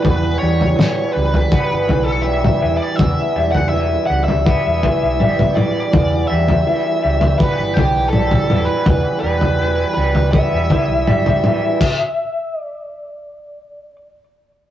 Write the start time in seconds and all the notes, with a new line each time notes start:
Already playing: E3 G3 B3
0.03 E1 E2 B4, kick, floor tom
0.39 E2 G3 C#5
0.61 floor tom
0.76 E3, snare, mid tom
1.13 C#2 G3 B4
1.34 floor tom
1.51 B3, kick
1.71 G1
1.88 B1 E3, floor tom
2.04 A4
2.22 G3 E5
2.44 floor tom, mid tom
2.62 E1 E3
2.77 D5
2.96 E1 E2 E5, kick, floor tom
3.36 E1 G3
3.51 F#5, floor tom
3.69 E3 E5
4.06 C#2 G3 F#5
4.24 E5
4.28 floor tom
4.46 B3, kick
4.66 E1
4.83 E3, kick, floor tom
5.03 B1
5.19 G1 G3, mid tom
5.39 floor tom, mid tom
5.55 E3 D5, mid tom
5.93 E1 E2, kick, floor tom
6.27 G3 E5
6.31 E2
6.48 floor tom
6.67 E3
7.03 C#2 G3
7.21 floor tom
7.38 B3 B4, kick
7.59 G1
7.74 B1 E3 G4, kick, floor tom
8.09 G3 A4, mid tom
8.31 floor tom, mid tom
8.50 E1 E3, mid tom
8.65 B4
8.86 E1 E2, kick, floor tom
9.20 E1 G3 B4
9.41 floor tom
9.61 E3
9.94 C#2 G3 B4
10.15 floor tom
10.31 B3 E5, kick
10.52 E1
10.70 E3, kick, floor tom
10.88 B1
11.07 G1 G3, mid tom
11.26 floor tom, mid tom
11.44 E3, mid tom
11.81 kick, crash
12.60 D5